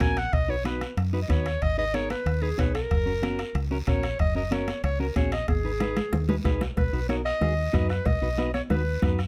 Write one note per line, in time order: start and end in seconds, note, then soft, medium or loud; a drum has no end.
0.00 0.27 A#1 medium
0.00 0.17 C#4 medium
0.00 0.17 F#4 medium
0.00 0.18 A#4 medium
0.00 0.19 G#5 loud
0.00 bombo low medium
0.00 bombo rim medium
0.00 high conga medium
0.00 high timbale medium
0.00 low timbale medium
0.00 short guiro medium
0.17 0.35 F#5 loud
0.17 bombo rim medium
0.17 high timbale medium
0.17 short guiro medium
0.33 0.85 B1 medium
0.33 0.51 D#5 medium
0.33 bombo low medium
0.33 bombo rim medium
0.33 high timbale medium
0.33 long guiro medium
0.48 0.54 D#4 medium
0.48 0.55 F#4 soft
0.48 0.55 B4 medium
0.48 0.65 C#5 loud
0.64 0.82 D#4 medium
0.64 0.82 F#4 medium
0.64 0.82 B4 medium
0.64 0.95 B4 medium
0.64 bombo rim medium
0.64 high conga medium
0.64 high timbale medium
0.64 short guiro medium
0.81 bombo rim medium
0.81 high conga medium
0.81 high timbale medium
0.81 short guiro medium
0.97 1.23 F#2 medium
0.97 bombo rim medium
0.97 high timbale medium
0.97 long guiro medium
1.13 1.19 D#4 medium
1.13 1.19 F#4 medium
1.13 1.19 B4 medium
1.22 1.31 D#5 medium
1.29 1.55 D#2 medium
1.29 1.46 D#4 medium
1.29 1.46 F#4 medium
1.29 1.47 B4 medium
1.29 1.63 C#5 medium
1.29 bombo low medium
1.29 bombo rim medium
1.29 high conga medium
1.29 high timbale medium
1.29 short guiro medium
1.46 bombo rim medium
1.46 high timbale medium
1.46 short guiro medium
1.62 2.14 G#1 medium
1.62 1.78 D#5 loud
1.62 bombo low medium
1.62 bombo rim medium
1.62 high timbale medium
1.62 long guiro medium
1.78 1.83 D#4 medium
1.78 1.84 G#4 medium
1.78 1.84 B4 medium
1.78 1.96 D#5 loud
1.94 2.11 D#4 medium
1.94 2.11 G#4 medium
1.94 2.11 A#4 medium
1.94 2.10 C#5 medium
1.94 bombo rim medium
1.94 high conga medium
1.94 high timbale medium
1.94 short guiro medium
2.10 2.44 B4 medium
2.10 bombo rim medium
2.10 high conga medium
2.10 high timbale medium
2.10 short guiro medium
2.26 2.52 D#2 medium
2.26 bombo rim medium
2.26 high timbale medium
2.26 long guiro medium
2.42 2.48 D#4 medium
2.42 2.48 G#4 medium
2.42 2.59 G#4 medium
2.42 2.48 B4 medium
2.58 2.85 B1 medium
2.58 2.75 D#4 medium
2.58 2.75 G#4 medium
2.58 2.74 B4 medium
2.58 2.76 C#5 medium
2.58 bombo low medium
2.58 bombo rim medium
2.58 high conga medium
2.58 high timbale medium
2.58 low timbale medium
2.58 short guiro medium
2.75 3.67 A#4 loud
2.75 bombo rim medium
2.75 high timbale medium
2.75 short guiro medium
2.91 3.42 F#1 medium
2.91 bombo low medium
2.91 bombo rim medium
2.91 high timbale medium
2.91 long guiro medium
3.06 3.12 C#4 medium
3.06 3.12 F#4 soft
3.06 3.12 A#4 medium
3.22 3.40 C#4 medium
3.22 3.40 F#4 medium
3.22 3.40 A#4 medium
3.22 bombo rim medium
3.22 high conga medium
3.22 high timbale medium
3.22 short guiro medium
3.39 bombo rim medium
3.39 high timbale medium
3.39 short guiro medium
3.55 3.81 C#2 medium
3.55 bombo rim medium
3.55 high timbale medium
3.55 long guiro medium
3.71 3.77 C#4 medium
3.71 3.77 F#4 medium
3.71 3.77 A#4 medium
3.87 4.13 A#1 medium
3.87 4.05 C#4 medium
3.87 4.04 F#4 medium
3.87 4.05 A#4 medium
3.87 4.17 C#5 medium
3.87 bombo low medium
3.87 bombo rim medium
3.87 high conga medium
3.87 high timbale medium
3.87 short guiro medium
4.03 bombo rim medium
4.03 high timbale medium
4.03 short guiro medium
4.19 4.71 F#1 medium
4.19 4.35 D#5 loud
4.19 bombo low medium
4.19 bombo rim medium
4.19 high timbale medium
4.19 long guiro medium
4.35 4.41 C#4 medium
4.35 4.41 F#4 medium
4.35 4.42 A#4 medium
4.35 4.54 D#5 medium
4.51 4.68 C#4 medium
4.51 4.68 F#4 medium
4.51 4.69 A#4 medium
4.51 4.84 C#5 medium
4.51 bombo rim medium
4.51 high conga medium
4.51 high timbale medium
4.51 short guiro medium
4.68 bombo rim medium
4.68 high conga medium
4.68 high timbale medium
4.68 short guiro medium
4.84 5.09 C#2 medium
4.84 4.99 C#5 loud
4.84 bombo rim medium
4.84 high timbale medium
4.84 long guiro medium
5.00 5.06 C#4 medium
5.00 5.06 F#4 medium
5.00 5.06 A#4 medium
5.00 5.15 A#4 medium
5.16 5.42 A#1 medium
5.16 5.33 C#4 medium
5.16 5.33 F#4 medium
5.16 5.33 G#4 medium
5.16 5.31 C#5 medium
5.16 bombo low medium
5.16 bombo rim medium
5.16 high conga medium
5.16 high timbale medium
5.16 short guiro medium
5.32 5.48 D#5 medium
5.32 bombo rim medium
5.32 high timbale medium
5.32 short guiro medium
5.48 6.00 G#1 medium
5.48 6.41 G#4 medium
5.48 bombo low medium
5.48 bombo rim medium
5.48 high conga medium
5.48 high timbale medium
5.48 long guiro medium
5.64 5.70 D#4 medium
5.64 5.70 G#4 medium
5.64 5.71 B4 medium
5.80 5.97 D#4 medium
5.80 5.98 G#4 medium
5.80 5.98 B4 medium
5.80 bombo rim medium
5.80 low conga medium
5.80 high timbale medium
5.80 short guiro medium
5.97 bombo rim medium
5.97 low conga medium
5.97 high timbale medium
5.97 short guiro medium
6.13 6.38 D#2 medium
6.13 bombo rim medium
6.13 low conga medium
6.13 high timbale medium
6.13 long guiro medium
6.29 6.34 D#4 medium
6.29 6.35 G#4 medium
6.29 6.35 B4 medium
6.29 low conga medium
6.29 low timbale medium
6.44 6.71 B1 medium
6.44 6.62 D#4 medium
6.44 6.62 G#4 medium
6.44 6.62 B4 medium
6.44 bombo low medium
6.44 bombo rim medium
6.44 low conga medium
6.44 low timbale medium
6.44 short guiro medium
6.61 bombo rim medium
6.61 low conga medium
6.61 low timbale medium
6.61 short guiro medium
6.77 6.90 B1 medium
6.77 7.07 B4 medium
6.77 bombo low medium
6.77 bombo rim medium
6.77 cowbell medium
6.77 low conga medium
6.77 long guiro medium
6.93 7.32 B1 medium
6.93 6.99 D#4 medium
6.93 6.99 F#4 medium
6.93 6.99 B4 medium
7.09 7.20 D#4 medium
7.09 7.21 F#4 medium
7.09 7.21 A#4 medium
7.09 7.16 C#5 medium
7.09 bombo rim medium
7.09 high conga medium
7.09 short guiro medium
7.25 7.86 D#5 loud
7.25 bombo rim medium
7.25 short guiro medium
7.41 7.67 D#2 medium
7.41 7.52 D#4 medium
7.41 7.53 F#4 medium
7.41 7.53 G#4 medium
7.41 bombo rim medium
7.41 cowbell medium
7.41 low conga medium
7.41 long guiro medium
7.73 8.00 F#2 medium
7.73 7.90 D#4 medium
7.73 7.90 F#4 medium
7.73 7.91 B4 medium
7.73 bombo low medium
7.73 bombo rim medium
7.73 high conga medium
7.73 low conga medium
7.73 low timbale medium
7.73 short guiro medium
7.89 8.07 B4 medium
7.89 bombo rim medium
7.89 short guiro medium
8.05 8.19 B1 medium
8.05 8.54 D#5 loud
8.05 bombo low medium
8.05 bombo rim medium
8.05 cowbell loud
8.05 low conga medium
8.05 long guiro medium
8.22 8.60 B1 medium
8.22 8.27 D#4 medium
8.22 8.28 F#4 medium
8.22 8.28 B4 medium
8.37 8.49 D#4 medium
8.37 8.49 F#4 medium
8.37 8.50 B4 medium
8.37 bombo rim medium
8.37 high conga medium
8.37 short guiro medium
8.54 8.61 C#5 medium
8.54 bombo rim medium
8.54 high conga medium
8.54 short guiro medium
8.70 8.96 D#2 medium
8.70 8.81 D#4 medium
8.70 8.82 F#4 medium
8.70 9.15 B4 medium
8.70 8.82 B4 medium
8.70 bombo rim medium
8.70 cowbell medium
8.70 low conga medium
8.70 long guiro medium
9.02 9.27 F#2 medium
9.02 9.19 D#4 medium
9.02 9.19 F#4 medium
9.02 9.19 B4 medium
9.02 bombo low medium
9.02 bombo rim medium
9.02 high conga medium
9.02 low conga medium
9.02 short guiro medium
9.19 bombo rim medium
9.19 short guiro medium